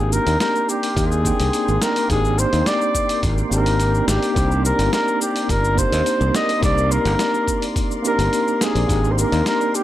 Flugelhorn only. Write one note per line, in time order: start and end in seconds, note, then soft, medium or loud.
0.00 0.14 G#4 medium
0.12 0.39 A#4 loud
0.40 0.71 A#4 loud
0.69 0.99 G4 medium
0.97 1.84 G#4 medium
1.82 2.09 A#4 medium
2.10 2.40 G#4 loud
2.39 2.68 C5 loud
2.67 3.25 D5 loud
3.52 4.04 A#4 medium
4.08 4.61 G4 medium
4.65 4.91 A#4 medium
4.93 5.19 A#4 loud
5.21 5.52 G4 medium
5.50 5.80 A#4 medium
5.78 6.37 C5 loud
6.35 6.63 D#5 loud
6.63 6.93 D5 loud
6.92 7.76 A#4 loud
8.06 8.63 A#4 medium
8.62 9.13 G#4 medium
9.11 9.20 C5 medium
9.18 9.46 A#4 medium
9.47 9.77 A#4 medium
9.75 9.83 G4 medium